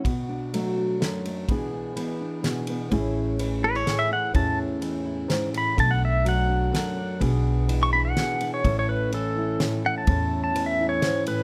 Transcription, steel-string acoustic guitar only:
\new Staff \with { instrumentName = "Steel-string acoustic guitar" } { \time 3/4 \key a \major \tempo 4 = 126 << { fis'8 d'8 a8 d'8 a'8 a8 | <e b d' gis'>8 d'8 b8 d'8 gis'8 b8 | <cis' e' gis'>4. cis'16 e'16 gis'8 e'8 | <cis' e' gis'>4. e'4. |
<a d' a'>4. d'8 a'8 d'8 | <b d' gis'>4. d'8 gis'8 d'8 | <cis' e' a'>4. e'8 a'8 e'8 | <cis' e' a'>4. e'4. | } \\ { b,4 fis4 fis,4 | b,4 e4 b,4 | a,4 e4 a,4 | a,4 e4 gis,8 a,8 |
b,4 fis4 fis,4 | b,4 e4 b,4 | a,4 e4 a,4 | a,4 e4 gis,8 a,8 | } >> }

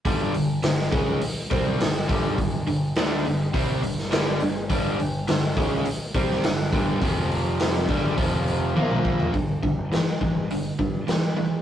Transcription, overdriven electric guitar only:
\new Staff \with { instrumentName = "Overdriven electric guitar" } { \clef bass \time 4/4 \key f \lydian \tempo 4 = 103 <g, d g>8 <g, d>8 <g, d>8 <cis aes cis'>8 r8 <c g c'>8 <g, d>8 <g, d g>8 | <g, d>8 <g, d>8 <d a d'>8 <g, d>8 <c g c'>8 <g, d>8 <g, d g>8 <g, d>8 | <g, d g>8 <g, d>8 <g, d>8 <cis aes cis'>8 r8 <c g c'>8 <g, d>8 <g, d g>8 | <f, c f>4. <g, d g>8 <f, c f>4 <bes, f bes>4 |
<g, d>8 <g, d>8 <g, e>8 <g, e>8 <g, d>8 <g, d>8 <g, e>8 <g, e>8 | }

